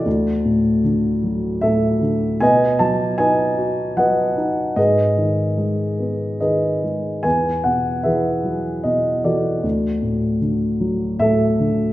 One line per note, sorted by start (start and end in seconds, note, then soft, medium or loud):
0.00 0.81 F#4 soft
0.00 0.81 A4 soft
0.00 0.80 D5 medium
0.06 2.37 D2 soft
0.45 1.61 A2 soft
0.84 2.00 D3 soft
1.24 2.38 F#3 soft
1.61 2.39 A2 soft
1.61 2.37 A4 medium
1.61 2.37 E5 medium
2.01 2.40 D3 soft
2.40 4.73 B2 medium
2.40 3.18 B4 medium
2.40 3.18 D#5 medium
2.40 2.81 G#5 medium
2.79 3.95 F#3 soft
2.79 3.16 A5 medium
3.18 4.35 D#4 soft
3.18 3.98 B4 soft
3.18 3.97 D#5 medium
3.18 3.93 G#5 medium
3.58 4.73 F#4 soft
3.97 4.74 F#3 soft
3.97 4.74 B4 soft
3.97 4.74 D#5 soft
3.97 4.79 F#5 medium
4.36 4.75 D#4 soft
4.76 7.21 G#2 soft
4.76 6.38 G#4 soft
4.76 6.38 B4 soft
4.76 6.37 D#5 medium
5.17 6.40 D#3 soft
5.57 6.82 G#3 soft
5.99 7.21 B3 soft
6.40 7.22 D#3 soft
6.40 7.21 G#4 soft
6.40 7.21 B4 soft
6.40 7.20 D#5 medium
6.84 7.24 G#3 soft
7.23 9.60 E2 soft
7.23 8.03 B4 soft
7.23 7.66 G#5 medium
7.64 8.83 B2 soft
7.64 8.06 F#5 medium
8.03 9.22 E3 soft
8.03 9.20 G#4 soft
8.03 9.20 B4 soft
8.03 8.86 E5 medium
8.44 9.60 F#3 soft
8.84 9.61 B2 soft
8.84 9.25 D#5 medium
9.24 9.63 E3 soft
9.24 10.39 F#4 soft
9.24 10.39 A4 soft
9.24 10.38 D5 medium
9.63 11.93 D2 soft
10.03 11.18 A2 soft
10.41 11.58 D3 soft
10.80 11.93 F#3 soft
11.19 11.93 A2 soft
11.19 11.93 A4 medium
11.19 11.93 E5 medium
11.59 11.93 D3 soft